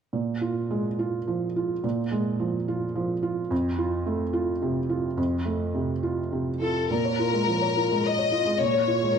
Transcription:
0.13 felt piano A#2
0.41 felt piano F4
0.71 felt piano G#3
0.99 felt piano F4
1.27 felt piano F3
1.56 felt piano F4
1.84 felt piano A#2
2.12 felt piano G#3
2.40 felt piano F3
2.68 felt piano F4
2.95 felt piano F3
3.23 felt piano F4
3.51 felt piano F2
3.78 felt piano F4
4.06 felt piano A3
4.33 felt piano F4
4.62 felt piano C3
4.89 felt piano F4
5.17 felt piano F2
5.45 felt piano A3
5.74 felt piano C3
6.03 felt piano F4
6.32 felt piano C3
6.60 felt piano F4, violin section A4
6.91 felt piano A#2, violin section A#4
7.05 felt piano C#5
7.19 felt piano F4
7.33 felt piano G#3
7.47 felt piano F3
7.62 felt piano C#5
7.77 felt piano F4
7.91 felt piano G#3
8.03 violin section D#5
8.18 felt piano C#5
8.32 felt piano F4
8.46 felt piano G#3
8.60 felt piano A#2, violin section C#5
8.74 felt piano C#5
8.88 felt piano F4
9.02 felt piano G#3
9.16 felt piano F3

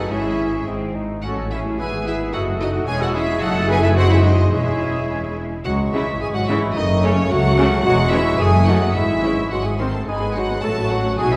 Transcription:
Already playing: double bass section F#1, cello section F#2, viola section A3 D#4, bassoon D#4, french horn section F#4, cor anglais A4, violin section F#5
0.09 double bass section G#1, cello section G#2, viola section G#3 C#4, bassoon C#4, french horn section E4, violin section E4 E5, clarinet G#4, flute section G#4, cor anglais C#5
0.66 double bass section G#1, cello section G#2, viola section G#3 C4, bassoon C4, cor anglais D#5
0.95 bassoon D#4
1.22 double bass section A1, cello section A2, viola section A3 C#4, bassoon C#4, french horn section F#4, violin section F#4 F#5, flute section A4, cor anglais C#5
1.37 viola section F#3 A3
1.50 viola section A3 C#4, french horn section E4, violin section E4 E5, flute section G#4
1.65 viola section F#3 A3
1.78 double bass section G#1, cello section G#2, viola section G#3 E4, bassoon B3, french horn section G#4, violin section G#4 G#5, flute section B4, clarinet B4, cor anglais E5
1.93 viola section B3 G#4
2.05 viola section G#3 E4, french horn section E4, violin section E4 E5, flute section G#4
2.21 viola section B3 G#4
2.33 double bass section F#1, cello section F#2, viola section F#3 D#4, bassoon A3, french horn section F#4, violin section F#4 F#5, flute section A4, clarinet A4, cor anglais D#5
2.47 viola section A3 F#4
2.59 viola section F#3 D#4, french horn section D#4, violin section D#4 D#5, flute section F#4
2.73 viola section A3 F#4
2.86 double bass section E1, cello section E2, viola section E3 C#4, bassoon G#3, french horn section G#4, clarinet G#4, violin section G#4 G#5, cor anglais C#5, flute section C#5
2.99 viola section G#3 E4, violin section F#4 F#5, french horn section F#4, flute section A4
3.13 viola section E3 C#4, french horn section E4, violin section E4 E5, flute section G#4
3.27 viola section G#3 E4
3.40 double bass section F#1, cello section F#2, viola section F#3 D#4, bassoon A3, french horn section F#4, violin section F#4 F#5, clarinet A4, flute section A4, cor anglais D#5
3.55 viola section A3 F#4
3.68 viola section F#3 D#4, violin section G#4 G#5, french horn section G#4, flute section B4
3.82 viola section A3 F#4, french horn section E4, violin section E4 E5, flute section G#4
3.95 viola section F#3 C4, bassoon G#3, violin section F#4 F#5, clarinet F#4, french horn section F#4, flute section C5, cor anglais C5
4.09 viola section G#3 D#4, violin section E4 E5, french horn section E4, flute section G#4
4.24 viola section F#3 C4, violin section D#4 D#5, french horn section D#4, flute section F#4
4.38 viola section G#3 D#4
4.52 double bass section E1, cello section E2, viola section E3 C#4, french horn section E4, violin section E4 E5, flute section G#4, clarinet G#4, cor anglais C#5
4.67 viola section G#3 E4
4.81 viola section E3 C#4
4.95 viola section G#3 E4
5.09 viola section E3 C#4
5.24 viola section G#3 E4
5.38 viola section E3 C#4
5.52 viola section G#3 E4
5.65 double bass section C#2, cello section C#2, french horn section F#3, bassoon G#3, clarinet F#4, cor anglais F#4, violin section F#5, flute section C#6
5.93 viola section C#3 G#3, french horn section E3, violin section C#4 E4 E5, clarinet E4, cor anglais E4
6.21 double bass section G#1, cello section G#2, french horn section G#3, bassoon G#3, clarinet G#4, cor anglais G#4, violin section G#5, flute section C#6
6.35 french horn section F#3, clarinet F#4, cor anglais F#4, violin section F#5
6.48 viola section C#3 G#3, french horn section E3, violin section C#4 E4 E5, clarinet E4, cor anglais E4
6.76 double bass section F#1, cello section F#2, french horn section D#3, bassoon A3, clarinet D#4, cor anglais D#4, violin section D#5, flute section C#6
7.03 french horn section C#3, viola section C#3 A3, clarinet C#4, violin section C#4 C#5, cor anglais C#4
7.30 double bass section C#2, cello section C#2, french horn section F#3, bassoon A3, clarinet F#4, cor anglais F#4, violin section F#5, flute section C#6
7.58 viola section C#3 A3, violin section C#4
7.85 double bass section E1, cello section E2, french horn section F#3, bassoon G#3, clarinet F#4, cor anglais F#4, violin section F#5, flute section C#6
8.12 french horn section E3, viola section E3 G#3, violin section C#4 E5, clarinet E4, cor anglais E4
8.39 double bass section F#1, cello section F#2, french horn section G#3, bassoon A3, clarinet G#4, cor anglais G#4, violin section G#5, flute section D#6
8.67 viola section D#3 A3, french horn section F#3, violin section A3 D#4 F#5, clarinet F#4, cor anglais F#4
8.95 double bass section G#1, cello section G#2, french horn section E3, bassoon G#3, clarinet E4, cor anglais E4, violin section E5, flute section C#6
9.24 viola section C#3 G#3, violin section C#4 E4
9.51 double bass section G#1, cello section G#2, french horn section F#3, bassoon G#3, clarinet F#4, cor anglais F#4, violin section F#5, flute section C6
9.65 french horn section G#3, clarinet G#4, cor anglais G#4, violin section G#5
9.79 viola section D#3 G#3, violin section C4 D#4 C6, french horn section C4, clarinet C5, cor anglais C5
9.94 french horn section A3, clarinet A4, cor anglais A4, violin section A5
10.07 double bass section G#1, cello section G#2, bassoon G#3, viola section G#3, french horn section G#3, violin section D#4 G#5, clarinet G#4, cor anglais G#4, flute section B5
10.22 viola section D#3 B3, violin section B3 G#4
10.35 french horn section F#3, viola section G#3, violin section D#4 F#5, cor anglais F#4, clarinet F#4
10.49 viola section D#3 B3, violin section B3 G#4
10.63 double bass section A1, cello section A2, viola section F#3 A3, bassoon F#3, violin section A3 F#4 A5, french horn section A3, clarinet A4, cor anglais A4, flute section C#6
10.77 viola section F#3 A3, violin section C#4 A4
10.90 viola section F#3 A3, french horn section F#3, violin section A3 F#4 F#5, clarinet F#4, cor anglais F#4
11.04 viola section F#3 A3, violin section C#4 A4
11.18 double bass section B1, cello section B2, bassoon F#3, viola section F#3, french horn section G#3, violin section D#4 F#4 G#5, clarinet G#4, cor anglais G#4, flute section D#6
11.31 viola section D#3, french horn section E3, violin section B3 D#4 E5, clarinet E4, cor anglais E4

